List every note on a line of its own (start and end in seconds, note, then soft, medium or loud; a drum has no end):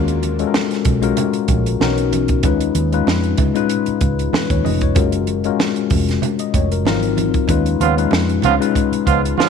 0.00 0.43 D#2 medium
0.00 0.30 G#3 medium
0.00 0.30 C#4 medium
0.00 0.30 F4 medium
0.00 0.30 F#4 medium
0.00 0.30 A#4 medium
0.08 closed hi-hat soft
0.23 closed hi-hat medium
0.23 muted conga soft
0.39 0.89 G#3 medium
0.39 0.89 C#4 medium
0.39 0.89 F4 medium
0.39 0.90 F#4 medium
0.39 0.46 A4 medium
0.39 closed hi-hat soft
0.47 0.93 A#4 medium
0.54 snare loud
0.54 high conga medium
0.71 snare soft
0.71 closed hi-hat soft
0.85 1.11 B1 medium
0.85 kick medium
0.85 closed hi-hat medium
0.85 muted conga soft
1.02 1.80 G#3 medium
1.02 1.80 C#4 medium
1.02 1.80 F4 medium
1.02 1.81 F#4 medium
1.02 1.81 A#4 medium
1.02 closed hi-hat soft
1.17 closed hi-hat medium
1.17 low conga medium
1.33 closed hi-hat soft
1.48 1.74 A#1 medium
1.48 kick medium
1.48 closed hi-hat medium
1.48 low conga medium
1.66 closed hi-hat soft
1.80 2.44 B1 medium
1.80 2.32 B3 medium
1.80 2.32 C#4 medium
1.80 2.32 D#4 medium
1.80 2.33 F#4 medium
1.80 2.33 A#4 loud
1.80 snare medium
1.80 high conga medium
1.98 closed hi-hat medium
2.12 closed hi-hat medium
2.12 high conga medium
2.28 kick medium
2.28 closed hi-hat soft
2.43 2.70 D#2 loud
2.43 2.82 G#3 medium
2.43 2.82 C#4 medium
2.43 2.82 D#4 medium
2.43 2.83 F4 medium
2.43 2.83 B4 medium
2.43 kick loud
2.43 closed hi-hat medium
2.43 muted conga soft
2.60 closed hi-hat soft
2.75 3.01 D#2 medium
2.75 closed hi-hat medium
2.75 muted conga soft
2.92 3.42 G#3 medium
2.92 3.42 C#4 medium
2.92 3.42 D#4 medium
2.92 3.43 F4 medium
2.92 3.43 B4 medium
2.92 closed hi-hat soft
3.07 3.33 F2 medium
3.07 snare loud
3.07 high conga medium
3.24 closed hi-hat soft
3.38 3.52 C#2 medium
3.38 kick medium
3.38 closed hi-hat medium
3.38 muted conga soft
3.38 low conga medium
3.55 4.56 G#3 medium
3.55 4.56 C#4 medium
3.55 4.56 D#4 medium
3.55 4.56 F4 medium
3.55 4.32 B4 medium
3.55 closed hi-hat soft
3.69 closed hi-hat medium
3.86 muted fingered electric bass stroke soft
3.86 closed hi-hat soft
4.01 4.27 C#2 medium
4.01 kick medium
4.01 closed hi-hat medium
4.19 closed hi-hat soft
4.33 4.49 B4 medium
4.33 snare loud
4.33 high conga medium
4.50 4.62 D#2 medium
4.50 4.64 C#5 medium
4.50 kick medium
4.50 closed hi-hat soft
4.65 4.96 F1 medium
4.65 4.81 D#5 medium
4.65 open hi-hat medium
4.65 high conga medium
4.81 5.12 C#5 medium
4.81 kick medium
4.81 closed hi-hat soft
4.95 5.48 F#1 loud
4.95 5.34 G#3 medium
4.95 5.34 C#4 medium
4.95 5.35 F4 medium
4.95 5.35 F#4 medium
4.95 5.35 A#4 medium
4.95 kick loud
4.95 closed hi-hat medium
4.95 muted conga soft
5.12 closed hi-hat medium
5.27 closed hi-hat medium
5.27 muted conga soft
5.44 5.94 G#3 medium
5.44 5.94 C#4 medium
5.44 5.95 F4 medium
5.44 5.95 F#4 medium
5.44 5.92 A#4 medium
5.44 closed hi-hat soft
5.60 snare loud
5.60 high conga medium
5.76 closed hi-hat soft
5.90 6.17 F1 medium
5.90 kick medium
5.90 open hi-hat medium
5.90 muted conga soft
6.09 snare soft
6.09 closed hi-hat soft
6.22 closed hi-hat medium
6.22 low conga medium
6.39 6.53 D#5 medium
6.39 closed hi-hat soft
6.54 6.85 F1 medium
6.54 6.71 C#5 medium
6.54 kick medium
6.54 closed hi-hat medium
6.54 low conga medium
6.72 6.86 A#4 medium
6.72 closed hi-hat soft
6.85 7.37 G#1 medium
6.85 7.37 F#3 medium
6.85 7.38 C4 medium
6.85 7.38 D#4 medium
6.85 7.38 F4 medium
6.85 7.38 A#4 medium
6.85 snare loud
6.85 high conga medium
7.03 closed hi-hat soft
7.17 closed hi-hat medium
7.17 high conga medium
7.34 kick medium
7.34 closed hi-hat soft
7.48 7.74 D#2 medium
7.48 7.87 G#3 medium
7.48 7.87 C#4 medium
7.48 7.87 D#4 medium
7.48 7.88 F4 medium
7.48 7.88 B4 medium
7.48 kick loud
7.48 closed hi-hat medium
7.48 muted conga soft
7.66 closed hi-hat soft
7.80 8.06 D#2 medium
7.80 7.95 C#3 medium
7.80 7.95 F3 medium
7.80 7.95 B3 medium
7.80 7.95 F4 medium
7.80 closed hi-hat medium
7.80 muted conga soft
7.97 8.47 G#3 medium
7.97 8.47 C#4 medium
7.97 8.47 D#4 medium
7.97 8.48 F4 medium
7.97 8.48 B4 medium
7.97 closed hi-hat soft
8.11 8.38 F2 medium
8.11 snare loud
8.11 high conga medium
8.29 closed hi-hat soft
8.42 8.57 C#2 medium
8.42 8.54 C#3 medium
8.42 8.54 F3 medium
8.42 8.54 B3 medium
8.42 8.54 F4 medium
8.42 closed hi-hat medium
8.42 muted conga soft
8.42 low conga medium
8.60 9.49 G#3 medium
8.60 9.49 C#4 medium
8.60 9.49 D#4 medium
8.60 9.49 F4 medium
8.60 9.49 B4 medium
8.60 closed hi-hat medium
8.75 kick medium
8.75 closed hi-hat medium
8.92 muted fingered electric bass stroke soft
8.92 closed hi-hat soft
9.06 9.33 C#2 medium
9.06 9.21 C#3 medium
9.06 9.21 F3 medium
9.06 9.21 B3 medium
9.06 9.21 F4 medium
9.06 kick medium
9.06 closed hi-hat medium
9.25 closed hi-hat soft
9.38 9.49 C#3 medium
9.38 9.49 F3 medium
9.38 9.49 B3 medium
9.38 9.49 F4 medium
9.38 snare loud
9.38 high conga medium